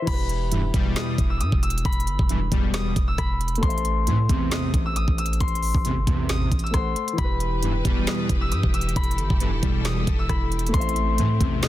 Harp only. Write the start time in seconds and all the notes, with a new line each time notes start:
Already playing: C5 E5
0.07 B5
0.96 D#6
1.30 E6
1.41 D#6
1.63 E6
1.85 B5
2.74 D#6
3.08 E6
3.18 B5
3.62 C6
4.51 D#6
4.86 E6
4.96 D#6
5.18 E6
5.41 C6
6.30 D#6
6.64 E6
6.74 C6
7.18 B5
8.07 D#6
8.41 E6
8.52 D#6
8.74 E6
8.96 B5
9.85 D#6
10.19 E6
10.29 B5
10.74 C6
11.63 D#6